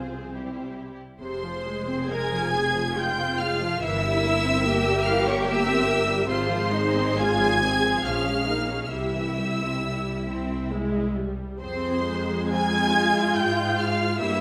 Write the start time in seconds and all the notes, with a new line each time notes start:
Already playing: C2 F3 C4 F4 G#4 C5
0.34 G3 E4 G4
1.20 F1 C3 G#4 C5 C6
1.43 F3
1.66 G#3
1.88 C4
2.09 G#3 A#4 G#5 G#6
2.32 F3
2.54 C3 G#4
2.75 F3
2.96 G#3 F4 G5 G6
3.19 C4
3.39 G#3 F5 F6
3.62 F3
3.81 G1 E3 E4 A#4 E5 E6
4.04 G3
4.24 A#3
4.44 C4
4.65 A#3 G4
4.85 G3
5.05 E3 F5 F6
5.26 G3 C#5 C#6
5.46 A#3 E5 E6
5.68 C4
5.87 A#3
6.06 G3
6.27 G#1 C3 F4 G#4 C5 C6
6.49 F3
6.71 G#3 D#4
6.94 C4
7.17 G#3 F4 G#5 G#6
7.39 F3
7.61 C3 C4
7.82 F3
8.04 A#1 F3 C#4 F5 F6
8.28 G#3
8.48 A#3 D#4
8.71 C#4
8.84 F6
8.90 C2 C3 E4 G4 E5 E6
9.15 E3
9.38 G3
9.62 C4
9.83 G3
10.29 C4
10.72 G#3
11.16 G3
11.59 F2 C4 G#4 C5 C6
12.07 G#3
12.51 C4 F4 G#5 G#6
12.94 F4
13.36 G#2 F4 G5 G6
13.79 F5 F6
14.19 G2 A#3 E4 G4 E5 E6